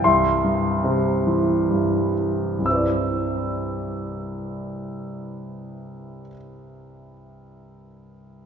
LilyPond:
<<
  \new Staff \with { instrumentName = "Grand piano" } { \time 3/4 \key c \major \tempo 4 = 62 <e'' c'''>2~ <e'' c'''>8 r8 | e'''2.~ | e'''2. | }
  \new Staff \with { instrumentName = "Grand piano" } { \clef bass \time 3/4 \key c \major c,8 g,8 c8 e8 g,4 | <c, g, c' e' b' d''>2.~ | <c, g, c' e' b' d''>2. | }
>>